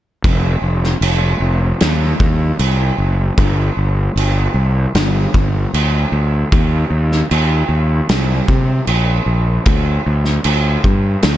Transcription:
0.24 F1, kick, crash
0.62 F1
0.84 snare
1.01 F1, crash
1.40 F1
1.81 D#2, snare, crash
2.20 D#2, kick
2.59 C2, crash
2.98 F#1
3.38 G1, kick, crash
3.77 G1
4.16 G1, crash
4.54 C2
4.95 G1, snare, crash
5.34 G1, kick
5.74 D2, crash
6.12 D2
6.52 D#2, kick, crash
6.91 D#2
7.12 snare
7.31 D#2, crash
7.69 D#2
8.09 C2, snare, crash
8.48 C3, kick
8.87 A#1, crash
9.26 A#1
9.66 D2, kick, crash
10.06 D2
10.25 snare
10.44 D2, crash
10.84 G2, kick
11.23 D2, snare, crash

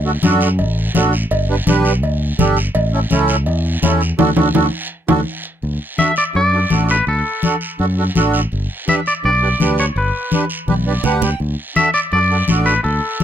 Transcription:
Already playing: D2
0.04 D4 F#4 A4
0.23 F#2 D4 F#4 A4, cowbell, high conga, short guiro
0.41 short guiro
0.58 A1, cowbell, high conga, long guiro
0.95 A1 D4 F#4 A4, cowbell, high conga, low timbale, short guiro
1.13 short guiro
1.31 G1, cowbell, high conga, long guiro
1.49 D4 G4 B4
1.67 B1 D4 G4 B4, cowbell, high conga, short guiro
1.85 short guiro
2.03 D2, cowbell, high conga, long guiro
2.39 G1 D4 G4 A4, cowbell, high conga, low conga, short guiro
2.57 short guiro
2.75 A1, cowbell, high conga, long guiro
2.93 C#4 E4 A4
3.10 C#2 C#4 E4 A4, cowbell, high conga, short guiro
3.28 short guiro
3.46 E2, cowbell, high conga, long guiro
3.82 E2 C#4 E4 A4, cowbell, high conga, low timbale, short guiro
4.01 short guiro
4.19 D2 D4 F#4 A4, high conga, high timbale, long guiro
4.36 D2 D4 F#4 A4, high conga, high timbale, long guiro
4.54 D2 D4 F#4 A4, high conga, high timbale, long guiro
5.08 D2 D4 F#4 A4, high conga, high timbale, long guiro
5.62 D2, high conga, long guiro
5.98 D4 F#4 A4 E5, high conga, short guiro
6.16 D5, short guiro
6.34 F#2 D4 F#4 A4 D5, high conga, long guiro
6.53 D4 F#4 A4
6.70 A1 D4 F#4 A4, high conga, short guiro
6.89 B4, short guiro
7.07 D2 A4, high conga, long guiro
7.43 D4 F#4 A4, high conga, short guiro
7.61 short guiro
7.79 F#2 D4 F#4 A4, high conga, long guiro
7.97 D4 F#4 A4
8.15 A1 D4 F#4 A4, high conga, short guiro
8.34 short guiro
8.52 G1, high conga, long guiro
8.88 D4 G4 B4 E5, high conga, short guiro
9.06 D5, short guiro
9.24 B1 D4 G4 B4 D5, high conga, long guiro
9.42 D4 G4 B4
9.60 D2 D4 G4 B4, high conga, short guiro
9.78 C#5, short guiro
9.96 G1 B4, high conga, long guiro
10.32 D4 G4 B4, high conga, short guiro
10.50 short guiro
10.68 B1 D4 G4 B4, high conga, long guiro
10.86 D4 G4 B4 D5
11.03 D2 D4 G4 B4 F#5, low conga, short guiro
11.22 G5, low conga, short guiro
11.40 D2, high conga, long guiro
11.76 D4 F#4 A4 E5, high conga, short guiro
11.94 D5, short guiro
12.12 F#2 D4 F#4 A4 D5, high conga, long guiro
12.30 D4 F#4 A4
12.48 A1 D4 F#4 A4, high conga, short guiro
12.66 B4, short guiro
12.84 D2 A4, high conga, long guiro
13.20 D4, high conga, short guiro

